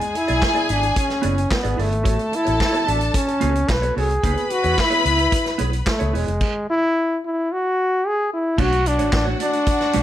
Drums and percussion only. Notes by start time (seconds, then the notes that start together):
0.01 closed hi-hat
0.15 closed hi-hat
0.28 closed hi-hat
0.42 kick, snare, clap
0.56 closed hi-hat
0.69 closed hi-hat
0.83 closed hi-hat
0.96 kick, closed hi-hat
1.10 snare, closed hi-hat
1.23 closed hi-hat
1.38 closed hi-hat
1.51 kick, snare, clap
1.64 closed hi-hat
1.79 open hi-hat
1.92 closed hi-hat
2.05 kick, closed hi-hat
2.19 closed hi-hat
2.33 closed hi-hat
2.46 closed hi-hat
2.60 kick, snare, clap
2.74 closed hi-hat
2.88 closed hi-hat
3.01 closed hi-hat
3.14 kick, closed hi-hat
3.28 closed hi-hat
3.41 closed hi-hat
3.55 closed hi-hat
3.69 kick, snare, clap
3.83 closed hi-hat
3.98 open hi-hat
4.11 closed hi-hat
4.23 kick, closed hi-hat
4.37 closed hi-hat
4.50 closed hi-hat
4.64 closed hi-hat
4.78 kick, snare, clap
4.92 closed hi-hat
5.06 closed hi-hat
5.19 closed hi-hat
5.32 kick, closed hi-hat
5.46 snare, closed hi-hat
5.59 closed hi-hat
5.73 closed hi-hat
5.87 kick, snare, clap
6.00 closed hi-hat
6.15 open hi-hat
6.28 closed hi-hat
6.41 kick, crash
8.58 kick, crash
8.72 closed hi-hat
8.86 closed hi-hat
8.99 closed hi-hat
9.13 kick, snare, clap
9.40 closed hi-hat
9.53 closed hi-hat
9.66 kick, closed hi-hat
9.80 snare, closed hi-hat
9.93 closed hi-hat